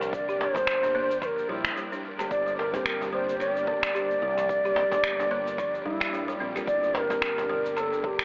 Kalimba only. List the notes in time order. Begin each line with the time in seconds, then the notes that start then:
0.01 F3
0.29 G4
0.56 G3
0.83 D4
0.95 A#3
1.22 F3
1.49 G3
1.77 G3
1.92 D4
2.19 D3
2.46 G3
2.74 C4
3.01 G3
3.13 G3
3.40 D4
3.67 D3
3.95 G4
4.22 G3
4.37 F3
4.65 G4
4.92 G3
5.19 D4
5.31 A#3
5.59 F3
5.86 G3
6.13 G3
6.28 G3
6.40 C4
6.56 F4
6.83 G3
7.10 C4
7.38 G3
7.50 G3
7.77 D3
8.04 D3